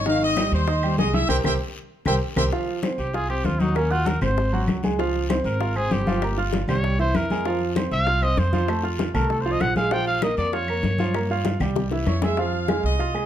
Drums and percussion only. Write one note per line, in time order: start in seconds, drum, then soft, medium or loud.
0.06 high bongo medium
0.06 high conga soft
0.06 long guiro medium
0.21 high bongo soft
0.21 high conga soft
0.37 high bongo medium
0.37 high conga loud
0.37 short guiro medium
0.37 claves medium
0.52 high bongo soft
0.52 high conga soft
0.52 short guiro medium
0.67 high bongo medium
0.67 high conga soft
0.67 long guiro medium
0.83 high conga soft
0.83 claves medium
0.98 high bongo soft
0.98 low bongo medium
0.98 high conga medium
0.98 short guiro medium
1.13 high conga medium
1.13 short guiro medium
1.29 low bongo loud
1.29 low conga medium
1.29 long guiro loud
1.29 claves medium
1.44 low bongo loud
1.44 low conga loud
1.44 long guiro loud
1.44 claves loud
2.05 low bongo loud
2.05 low conga medium
2.05 long guiro medium
2.05 claves medium
2.36 low bongo loud
2.36 low conga loud
2.36 long guiro loud
2.36 claves loud
2.52 high bongo medium
2.52 high conga soft
2.52 long guiro medium
2.67 high bongo soft
2.67 high conga soft
2.83 high bongo medium
2.83 high conga loud
2.83 short guiro medium
2.83 claves medium
2.98 high bongo soft
2.98 high conga soft
2.98 short guiro medium
3.13 high bongo medium
3.13 high conga soft
3.13 long guiro medium
3.29 high conga soft
3.29 claves medium
3.44 high bongo soft
3.44 low bongo medium
3.44 high conga medium
3.44 short guiro medium
3.60 high conga medium
3.60 short guiro medium
3.75 high bongo medium
3.75 high conga soft
3.75 long guiro medium
3.75 claves medium
3.91 high bongo soft
3.91 high conga soft
4.06 high bongo medium
4.06 high conga medium
4.06 short guiro medium
4.21 high bongo soft
4.21 high conga soft
4.21 low conga medium
4.21 short guiro medium
4.21 claves medium
4.37 high bongo medium
4.37 high conga soft
4.37 long guiro medium
4.53 high conga soft
4.68 high bongo soft
4.68 low bongo medium
4.68 high conga medium
4.68 short guiro medium
4.68 claves medium
4.83 high conga medium
4.83 short guiro medium
4.99 high bongo medium
4.99 high conga soft
4.99 long guiro medium
5.15 high bongo soft
5.15 high conga soft
5.30 high bongo medium
5.30 high conga loud
5.30 short guiro medium
5.30 claves medium
5.45 high bongo soft
5.45 high conga soft
5.45 short guiro medium
5.61 high bongo medium
5.61 high conga soft
5.61 long guiro medium
5.76 high conga soft
5.76 claves medium
5.91 high bongo soft
5.91 low bongo medium
5.91 high conga medium
5.91 short guiro medium
6.07 high conga medium
6.07 short guiro medium
6.22 high bongo medium
6.22 high conga soft
6.22 long guiro medium
6.22 claves medium
6.38 high bongo soft
6.38 high conga soft
6.53 high bongo medium
6.53 high conga medium
6.53 short guiro medium
6.68 high bongo soft
6.68 high conga soft
6.68 low conga medium
6.68 short guiro medium
6.68 claves medium
6.84 high bongo medium
6.84 high conga soft
6.84 long guiro medium
7.00 high conga soft
7.15 high bongo soft
7.15 low bongo medium
7.15 high conga medium
7.15 short guiro medium
7.15 claves medium
7.30 high conga medium
7.30 short guiro medium
7.45 high bongo medium
7.45 high conga soft
7.45 long guiro medium
7.61 high bongo soft
7.61 high conga soft
7.76 high bongo medium
7.76 high conga loud
7.76 short guiro medium
7.76 claves medium
7.91 high bongo soft
7.91 high conga soft
7.91 short guiro medium
8.07 high bongo medium
8.07 high conga soft
8.07 long guiro medium
8.22 high conga soft
8.22 claves medium
8.37 high bongo soft
8.37 low bongo medium
8.37 high conga medium
8.37 short guiro medium
8.53 high conga medium
8.53 short guiro medium
8.68 high bongo medium
8.68 high conga soft
8.68 long guiro medium
8.68 claves medium
8.84 high bongo soft
8.84 high conga soft
8.99 high bongo medium
8.99 high conga loud
8.99 short guiro medium
9.15 high bongo soft
9.15 high conga soft
9.15 low conga medium
9.15 short guiro medium
9.15 claves medium
9.30 high bongo medium
9.30 high conga soft
9.30 long guiro medium
9.45 high conga soft
9.61 high bongo soft
9.61 low bongo medium
9.61 high conga medium
9.61 short guiro medium
9.61 claves medium
9.76 high conga medium
9.76 short guiro medium
9.91 high bongo medium
9.91 high conga soft
9.91 long guiro medium
10.07 high bongo soft
10.07 high conga soft
10.22 high bongo medium
10.22 high conga loud
10.22 short guiro medium
10.22 claves medium
10.37 high bongo soft
10.37 high conga soft
10.37 short guiro medium
10.53 high bongo medium
10.53 high conga soft
10.53 long guiro medium
10.68 high conga soft
10.68 claves medium
10.83 high bongo soft
10.83 low bongo medium
10.83 high conga medium
10.83 short guiro medium
10.98 high conga medium
10.98 short guiro medium
11.14 high bongo medium
11.14 high conga soft
11.14 long guiro medium
11.14 claves medium
11.29 high bongo soft
11.29 high conga soft
11.45 high bongo medium
11.45 high conga medium
11.45 short guiro medium
11.60 high bongo medium
11.60 high conga soft
11.60 low conga medium
11.60 short guiro medium
11.60 claves medium
11.76 high bongo medium
11.76 high conga soft
11.76 low conga medium
11.76 long guiro medium
11.91 low bongo medium
11.91 high conga soft
12.06 low bongo loud
12.06 high conga medium
12.06 short guiro medium
12.06 claves medium
12.22 low bongo loud
12.22 high conga medium
12.22 short guiro medium
12.37 high bongo medium
12.37 high conga soft
12.53 high bongo soft
12.53 high conga soft
12.68 high bongo medium
12.68 high conga medium
12.68 claves medium
12.84 high bongo soft
12.84 high conga soft
12.99 high bongo medium
12.99 high conga soft
13.15 high conga soft
13.15 claves medium